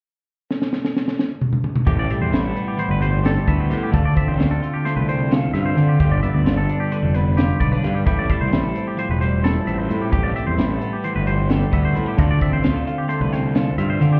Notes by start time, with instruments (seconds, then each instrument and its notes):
0.51 snare
0.62 snare
0.73 snare
0.85 snare
0.97 snare
1.08 snare
1.19 snare
1.41 mid tom
1.53 mid tom
1.64 mid tom
1.75 mid tom
1.87 picked electric bass A1, clean electric guitar A2 G4, kick, closed hi-hat
1.99 clean electric guitar D5
2.10 clean electric guitar G3 E5, closed hi-hat
2.21 picked electric bass E2, clean electric guitar C5
2.32 picked electric bass A1, clean electric guitar E4, snare, closed hi-hat
2.44 clean electric guitar A4
2.56 clean electric guitar B3, closed hi-hat
2.68 clean electric guitar G4
2.77 clean electric guitar E3 C5, closed hi-hat
2.89 picked electric bass G1, clean electric guitar B4
3.01 clean electric guitar G3 C5, closed hi-hat
3.24 clean electric guitar G4 A4, snare, closed hi-hat
3.48 picked electric bass D2, clean electric guitar B3 E5, kick, closed hi-hat
3.60 clean electric guitar C5
3.70 clean electric guitar A2 G4, picked electric bass A2, snare, closed hi-hat
3.83 clean electric guitar G4
3.91 picked electric bass D2, clean electric guitar D3 F4 A4, kick, closed hi-hat
4.05 clean electric guitar D5
4.16 clean electric guitar C4 E5, kick, closed hi-hat
4.27 picked electric bass A1, clean electric guitar C5
4.39 picked electric bass D2, clean electric guitar F4, snare, closed hi-hat
4.51 clean electric guitar A4
4.62 clean electric guitar F4, closed hi-hat
4.74 clean electric guitar G4
4.85 clean electric guitar A3 C5, snare, closed hi-hat
4.96 picked electric bass C2, clean electric guitar B4
5.09 clean electric guitar C4 C5, closed hi-hat
5.31 clean electric guitar F4 A4, snare, closed hi-hat
5.54 picked electric bass G2, clean electric guitar F4 E5, snare, closed hi-hat
5.66 clean electric guitar C5
5.76 picked electric bass D3, clean electric guitar D3 F4, closed hi-hat
5.89 clean electric guitar G4
6.00 picked electric bass G1, clean electric guitar G2 F4 G4, kick, closed hi-hat
6.12 clean electric guitar D5
6.23 clean electric guitar B3 E5, closed hi-hat
6.34 picked electric bass D2, clean electric guitar D5
6.45 picked electric bass G1, clean electric guitar F4, snare, closed hi-hat
6.57 clean electric guitar A4
6.69 clean electric guitar D4, closed hi-hat
6.80 clean electric guitar G4
6.91 clean electric guitar D3 B4, closed hi-hat
7.03 picked electric bass F1, clean electric guitar A4
7.14 clean electric guitar B3 B4, closed hi-hat
7.37 clean electric guitar F4 G4, snare, closed hi-hat
7.60 picked electric bass B1, clean electric guitar B3 D5, kick, closed hi-hat
7.72 clean electric guitar D4 B4
7.83 picked electric bass G2, clean electric guitar G2 F4, snare, closed hi-hat
7.95 clean electric guitar G4
8.06 picked electric bass A1, clean electric guitar A2 E4 G4, kick, closed hi-hat
8.19 clean electric guitar D5
8.30 clean electric guitar G3 E5, kick, closed hi-hat
8.41 picked electric bass C2, clean electric guitar C5
8.52 picked electric bass A1, clean electric guitar E4, snare, closed hi-hat
8.64 clean electric guitar A4
8.75 clean electric guitar C4, closed hi-hat
8.88 clean electric guitar G4
8.97 clean electric guitar F3 C5, closed hi-hat
9.10 picked electric bass E1, clean electric guitar B4
9.21 clean electric guitar G3 C5, closed hi-hat
9.44 clean electric guitar E4 A4, snare, closed hi-hat
9.66 picked electric bass A1, clean electric guitar C4 E5, closed hi-hat
9.78 clean electric guitar C5
9.89 clean electric guitar A2 E4, picked electric bass A2, closed hi-hat
10.02 clean electric guitar G4
10.12 picked electric bass A1, clean electric guitar A2 G4, kick, closed hi-hat
10.23 clean electric guitar D5
10.36 clean electric guitar G3 E5, closed hi-hat
10.47 picked electric bass E2, clean electric guitar C5
10.58 picked electric bass A1, clean electric guitar E4, snare, closed hi-hat
10.70 clean electric guitar A4
10.82 clean electric guitar B3, closed hi-hat
10.93 clean electric guitar G4
11.04 clean electric guitar E3 C5, closed hi-hat
11.16 picked electric bass G1, clean electric guitar B4
11.27 clean electric guitar G3 C5, closed hi-hat
11.50 clean electric guitar G4 A4, snare, closed hi-hat
11.71 picked electric bass D2, clean electric guitar B3 E5, kick, closed hi-hat
11.85 clean electric guitar C5
11.94 clean electric guitar A2 E4, picked electric bass A2, closed hi-hat
12.06 clean electric guitar G4
12.17 picked electric bass D2, clean electric guitar D3 F4 A4, kick, closed hi-hat
12.31 clean electric guitar D5
12.41 clean electric guitar C4 E5, kick, closed hi-hat
12.52 picked electric bass A1, clean electric guitar C5
12.64 picked electric bass D2, clean electric guitar F4, snare, closed hi-hat
12.76 clean electric guitar A4
12.87 clean electric guitar F4, closed hi-hat
12.98 clean electric guitar G4
13.08 clean electric guitar A3 C5, closed hi-hat
13.21 picked electric bass C2, clean electric guitar B4
13.32 clean electric guitar C4 C5, snare, closed hi-hat
13.55 clean electric guitar F4 A4, snare, closed hi-hat
13.78 picked electric bass G2, clean electric guitar F4 E5, closed hi-hat
13.90 clean electric guitar C5
14.01 clean electric guitar D3 F4, picked electric bass D3, closed hi-hat
14.13 clean electric guitar G4